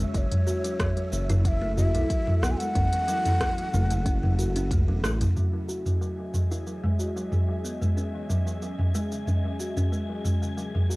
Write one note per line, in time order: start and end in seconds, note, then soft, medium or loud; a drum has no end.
0.00 0.10 G#3 medium
0.00 0.10 C#4 medium
0.00 5.38 E4 medium
0.00 0.10 C#5 medium
0.00 shaker soft
0.14 0.26 F#1 medium
0.14 0.24 F#3 medium
0.14 5.32 E4 medium
0.14 5.32 F#4 medium
0.14 5.32 A4 loud
0.14 1.41 C#5 medium
0.14 0.19 D#5 medium
0.14 kick loud
0.14 closed hi-hat medium
0.14 shaker soft
0.32 0.40 F#3 medium
0.32 closed hi-hat medium
0.32 mid tom medium
0.47 0.63 F#4 medium
0.47 shaker medium
0.64 0.78 F#3 medium
0.64 closed hi-hat soft
0.64 shaker soft
0.80 0.96 F#3 medium
0.80 kick loud
0.80 cross-stick medium
0.80 closed hi-hat medium
0.80 mid tom medium
0.80 shaker soft
0.97 1.11 F#3 medium
0.97 closed hi-hat soft
1.12 1.96 F#1 loud
1.12 1.29 E3 medium
1.12 shaker medium
1.30 1.44 E4 loud
1.30 closed hi-hat soft
1.30 mid tom medium
1.30 shaker soft
1.45 1.61 F#3 medium
1.45 1.75 E5 loud
1.45 1.49 F#5 medium
1.45 kick loud
1.45 closed hi-hat medium
1.45 shaker soft
1.62 1.77 A3 loud
1.77 1.94 F#4 medium
1.77 2.44 E5 loud
1.77 mid tom medium
1.77 shaker medium
1.94 2.05 B1 medium
1.94 2.09 F#3 loud
1.94 closed hi-hat soft
1.94 shaker soft
2.10 2.26 F#3 medium
2.10 kick loud
2.10 closed hi-hat medium
2.10 shaker soft
2.27 2.41 F#3 medium
2.27 mid tom medium
2.43 2.55 B1 medium
2.43 2.59 B3 medium
2.43 2.52 F#5 loud
2.43 cross-stick medium
2.43 shaker medium
2.51 2.59 G#5 loud
2.58 2.74 G#3 medium
2.58 4.71 F#5 loud
2.58 closed hi-hat soft
2.58 shaker soft
2.75 2.87 F#1 medium
2.75 2.91 C#4 medium
2.75 kick medium
2.75 closed hi-hat medium
2.75 mid tom medium
2.75 shaker soft
2.92 3.07 E3 medium
2.92 closed hi-hat medium
3.08 3.24 F#3 loud
3.08 closed hi-hat soft
3.08 shaker medium
3.25 3.40 E3 medium
3.25 closed hi-hat soft
3.25 mid tom medium
3.25 shaker soft
3.41 3.57 F#3 medium
3.41 kick loud
3.41 cross-stick medium
3.41 closed hi-hat medium
3.41 shaker soft
3.58 3.72 F#3 medium
3.58 closed hi-hat soft
3.73 4.72 F#1 loud
3.73 3.89 A3 loud
3.73 mid tom medium
3.73 shaker medium
3.90 3.99 C#3 medium
3.90 closed hi-hat soft
3.90 shaker soft
4.06 4.21 C#4 medium
4.06 kick loud
4.06 closed hi-hat medium
4.06 shaker soft
4.23 4.38 F#3 medium
4.23 mid tom medium
4.38 4.48 F#4 medium
4.38 closed hi-hat soft
4.38 shaker medium
4.56 4.65 C#4 loud
4.56 closed hi-hat soft
4.56 shaker soft
4.71 4.90 C#2 medium
4.71 4.87 A3 medium
4.71 kick loud
4.71 closed hi-hat medium
4.71 mid tom medium
4.71 shaker soft
4.88 5.05 E1 loud
4.88 5.02 F#3 medium
5.03 5.27 A1 loud
5.03 5.20 A3 medium
5.03 cross-stick medium
5.03 shaker medium
5.21 5.30 C#3 medium
5.21 closed hi-hat soft
5.21 mid tom medium
5.21 shaker soft
5.36 5.46 F#3 medium
5.36 10.54 C#4 medium
5.36 10.54 G#4 medium
5.36 10.54 D#5 medium
5.36 10.54 E5 medium
5.36 10.96 G#5 medium
5.36 mid tom medium
5.36 shaker soft
5.53 5.62 F#3 medium
5.68 5.85 F#4 medium
5.68 shaker medium
5.86 6.00 F#3 medium
5.86 mid tom medium
5.86 shaker soft
6.01 6.18 F#3 medium
6.01 shaker soft
6.19 6.33 F#3 medium
6.34 6.50 E3 medium
6.34 mid tom medium
6.34 shaker medium
6.51 6.66 E4 medium
6.51 shaker soft
6.67 6.83 F#3 medium
6.67 shaker soft
6.84 6.98 G#3 medium
6.84 mid tom medium
6.99 7.16 F#4 medium
6.99 shaker medium
7.16 7.31 F#3 medium
7.16 shaker soft
7.32 7.47 F#3 medium
7.32 mid tom medium
7.32 shaker soft
7.49 7.63 F#3 medium
7.64 7.81 B3 medium
7.64 shaker medium
7.81 7.95 G#3 medium
7.81 mid tom medium
7.81 shaker soft
7.97 8.12 C#4 medium
7.97 shaker soft
8.14 8.29 E3 medium
8.29 8.46 F#3 medium
8.29 mid tom medium
8.29 shaker medium
8.46 8.61 E3 medium
8.46 shaker soft
8.62 8.78 F#3 medium
8.62 shaker soft
8.79 8.93 F#3 medium
8.79 mid tom medium
8.95 9.10 G#3 medium
8.95 shaker medium
9.12 9.21 C#3 medium
9.12 shaker soft
9.27 9.43 C#4 medium
9.27 mid tom medium
9.27 shaker soft
9.45 9.59 F#3 medium
9.60 9.70 F#4 medium
9.60 shaker medium
9.77 9.86 C#4 medium
9.77 mid tom medium
9.77 shaker soft
9.92 10.08 G#3 medium
9.92 shaker soft
10.09 10.23 F#3 medium
10.24 10.41 G#3 medium
10.24 mid tom medium
10.24 shaker medium
10.42 10.51 C#3 medium
10.42 shaker soft
10.57 10.67 F#3 medium
10.57 10.96 F#4 medium
10.57 10.96 A4 medium
10.57 10.96 C#5 medium
10.57 10.96 G#5 medium
10.57 shaker soft
10.74 10.84 F#3 medium
10.74 mid tom medium
10.90 10.96 F#4 medium
10.90 shaker medium